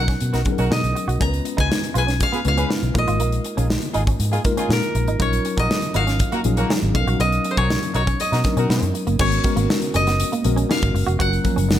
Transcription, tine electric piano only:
Already playing: F#3 B3 C#4 D#4 A#4
0.45 F#3 B3 C#4 D#4 G#4
0.52 A#4
1.20 G#3 B3 C#4 F4 A#4
1.27 B4
2.45 G#3 B3 C#4 E4 B4
2.52 F4
2.94 G#3 A#3 D#4 F4 A#4
4.44 G#3 A#3 D#4 F4 A#4
5.19 F#3 C#4 D#4 F4 A#4
6.45 F#3 C#4 D#4 F4 G#4
6.94 F#3 B3 C#4 D#4 A4
7.01 A#4
8.44 F#3 B3 C#4 D4 A#4
8.51 D#4
9.20 G#3 B3 C#4 F#4 A#4
9.44 G#3 B3 C#4 F#4 A#4
10.45 G#3 B3 C#4 F#4 A#4
11.19 F#3 A#3 C#4 F4 A#4
11.45 F3 F#3 A#3 C#4 A#4

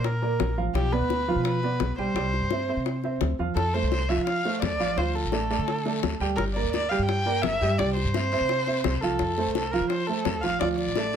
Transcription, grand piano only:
Already playing: A#3 A#4 D5
0.22 A#3 A#4 D5
0.58 F3 F4 F5
0.93 B3 B4 D5
1.28 F3 F4 F5
1.64 B3 B4 D5
1.98 G3 G4 G5
2.16 G3 G4 G5
2.51 C4 C5 E5
2.69 C4 C5 E5
3.04 C4 C5 E5
3.39 F3 F4 F5
3.75 A3 A4 C5
4.10 F3 F4 F5
4.45 A3 A4 C5
4.80 F3 F4 F5
4.98 F3 F4 F5
5.32 A3 A4 D5
5.50 A3 A4 D5
5.85 A3 A4 D5
6.21 G3 G4 G5
6.56 A#3 A#4 D5
6.91 G3 G4 G5
7.26 A#3 A#4 D5
7.61 G3 G4 G5
7.79 G3 G4 G5
8.14 C4 C5 E5
8.33 C4 C5 E5
8.67 C4 C5 E5
9.03 F3 F4 F5
9.38 A3 A4 C5
9.73 F3 F4 F5
10.09 A3 A4 C5
10.43 F3 F4 F5
10.61 F3 F4 F5
10.97 A3 A4 D5

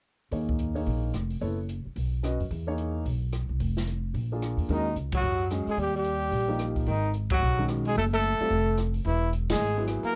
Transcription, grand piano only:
0.32 A#3 D#4 G#4 C#5
0.75 A#3 D#4 G#4 C#5
1.41 B3 E4 A4 C#5
2.23 C#4 F#4 B4 D#5
2.67 A#3 D#4 G#4 C#5
4.32 A#3 D4 F4 G#4
4.70 G#3 C#4 F#4 A#4
5.51 G#3 C#4 F#4 G#4
6.48 F3 A#3 D#4 G4
7.58 D#3 G#3 C#4 F#4
8.41 G3 C4 F4 A4
9.77 F#3 B3 E4 G#4

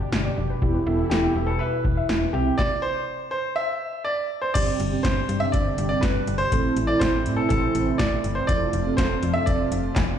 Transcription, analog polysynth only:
0.62 B3 E4 G4
0.86 B3 E4 A4
2.34 C4 E4 G4
4.55 C4 D4 G4
4.92 C4 D4 G4
5.41 C4 D4 G4
6.52 C4 E4 A4
6.89 C4 E4 A4
7.38 C4 E4 C5
8.49 C4 F4 A4
8.86 C4 F4 A4
9.35 C4 F4 A4

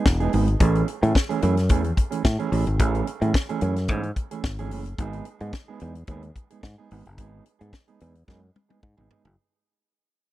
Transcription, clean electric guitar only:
0.07 muted clean electric guitar stroke
0.20 G#3 B3 D#4 G#4
0.33 G#3 B3 D#4 G#4
0.49 muted clean electric guitar stroke
0.61 E3 A3 C#4 G#4
0.88 muted clean electric guitar stroke
1.04 E3 A3 C#4 G#4
1.15 muted clean electric guitar stroke
1.29 E3 A3 C#4 G#4
1.42 E3 A3 C#4 G#4
1.58 muted clean electric guitar stroke
1.70 E3 A3 C#4 G#4
1.84 muted clean electric guitar stroke
1.97 muted clean electric guitar stroke
2.11 E3 A3 C#4 G#4
2.26 muted clean electric guitar stroke
2.39 E3 A3 C#4 G#4
2.51 E3 A3 C#4 G#4
2.66 muted clean electric guitar stroke
2.79 E3 A3 C#4 G#4
3.08 muted clean electric guitar stroke
3.22 E3 A3 C#4 G#4
3.35 muted clean electric guitar stroke
3.49 E3 A3 C#4 G#4
3.62 E3 A3 C#4 G#4
3.77 muted clean electric guitar stroke
3.89 E3 A3 C#4 G#4
4.04 muted clean electric guitar stroke
4.17 muted clean electric guitar stroke
4.31 E3 A3 C#4 G#4
4.59 E3 A3 C#4 G#4
4.72 E3 A3 C#4 G#4
4.87 muted clean electric guitar stroke
5.00 G#3 B3 D#4 G#4
5.27 muted clean electric guitar stroke
5.41 G#3 B3 D#4 G#4
5.56 muted clean electric guitar stroke
5.68 G#3 B3 D#4 G#4
5.81 G#3 B3 D#4 G#4
5.96 muted clean electric guitar stroke
6.09 G#3 B3 D#4 G#4
6.24 muted clean electric guitar stroke
6.36 muted clean electric guitar stroke
6.51 G#3 B3 D#4 G#4
6.78 G#3 B3 D#4 G#4
6.91 G#3 B3 D#4 G#4
7.06 muted clean electric guitar stroke
7.18 G#3 B3 D#4 G#4
7.59 G#3 B3 D#4 G#4
7.74 muted clean electric guitar stroke
7.88 G#3 B3 D#4 G#4
8.01 G#3 B3 D#4 G#4
8.28 G#3 B3 D#4 G#4
8.42 muted clean electric guitar stroke
8.55 muted clean electric guitar stroke
8.69 G#3 B3 D#4 G#4
8.82 muted clean electric guitar stroke
8.97 G#3 B3 D#4 G#4
9.10 G#3 B3 D#4 G#4
9.25 muted clean electric guitar stroke

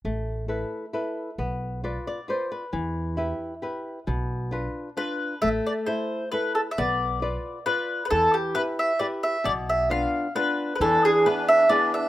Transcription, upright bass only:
0.05 A1
1.38 B1
2.73 E2
4.07 B1
5.44 A1
6.79 B1
8.12 E2
9.46 B1
10.80 E2

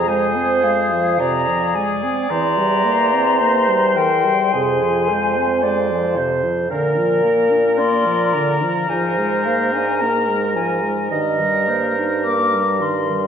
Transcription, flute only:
0.08 G#5
0.64 F5
1.20 A#5
1.75 G#5
2.30 A#5
3.96 G5
4.53 G#5
7.78 C6
8.33 A#5
8.89 G#5
9.45 F5
9.73 G#5
10.01 A#5
10.56 G#5
12.24 D6
12.82 C6

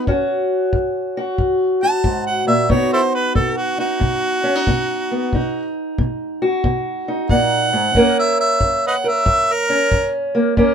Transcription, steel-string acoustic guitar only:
Already playing: F#4
0.07 F#2 C#4 F#4
0.73 F#2
1.17 F#4
1.39 F#2
1.83 F#4
2.04 G#2
2.47 A#2
2.69 B2 B3 D#4 F#4
3.35 B2
3.78 D#4
4.00 B2
4.44 C#4
4.55 D#4
4.67 B2
5.11 B3
5.33 B2 D#4
5.98 B2
6.42 F#4
6.64 B2
7.08 D#4
7.30 A#2
7.73 G#2
7.95 F#2 A#3 C#4 A#4
8.61 F#2
9.04 A#4
9.26 F#2
9.70 C#4
9.92 F#2
10.35 A#3
10.57 F#2 A#3 C#4 A#4

